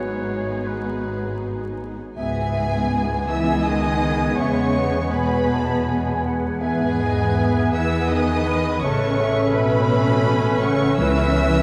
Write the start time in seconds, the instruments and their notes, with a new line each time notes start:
Already playing: double bass section G#1, cello section G#2, viola section G#3 B3, clarinet B3, french horn section B3 F#4, violin section D#4 G#4 C#5, oboe C#5, flute section F#6
0.65 violin section B4, oboe B4
2.16 double bass section C#2, cello section G#2, french horn section G#3 B3, viola section G#3 B3, clarinet B3, violin section G#4 G#5, flute section E5, oboe G#5
2.92 flute section G#5
3.27 cello section E3, violin section E5 E6
3.65 cello section D#3, violin section D#5 D#6
4.37 double bass section E2, cello section C#3, violin section C#5 C#6, flute section E5
4.77 flute section F#5
5.11 cello section B2, violin section B4 B5, flute section G#5
5.52 flute section A5
5.88 flute section G#5
6.26 flute section F#5
6.60 cello section G#2, viola section B3 B4, french horn section B3 G#4, clarinet B3, violin section G#4 G#5, flute section E5, oboe G#5
6.99 flute section D#5
7.35 flute section E5
7.72 cello section E3, violin section E5 E6, flute section F#5
8.08 cello section D#3, violin section D#5 D#6, flute section G#5
8.46 flute section B5
8.81 double bass section A1, cello section C#3, clarinet C#4, viola section C#4, french horn section C#4 A4, violin section C#5 C#6, oboe E5, flute section A5
9.19 flute section E5
9.55 cello section B2, violin section B4 B5
10.27 flute section G#5
10.61 cello section C#3, violin section C#5 C#6, flute section F#5
10.97 double bass section C#2, timpani C#3, cello section E3, french horn section B3 B4, viola section B4, oboe B4, flute section E5, violin section E5 E6